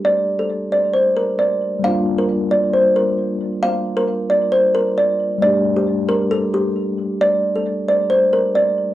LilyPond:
<<
  \new Staff \with { instrumentName = "Kalimba" } { \time 4/4 \key g \minor \tempo 4 = 134 d''8. a'8. d''8 c''8 bes'8 d''4 | f''8. bes'8. d''8 c''8 bes'4. | f''8. bes'8. d''8 c''8 bes'8 d''4 | d''8. g'8. bes'8 a'8 g'4. |
d''8. a'8. d''8 c''8 bes'8 d''4 | }
  \new Staff \with { instrumentName = "Tine electric piano" } { \time 4/4 \key g \minor <g a d' g'>1 | <g bes d' f'>1~ | <g bes d' f'>1 | <g a d' g'>1~ |
<g a d' g'>1 | }
>>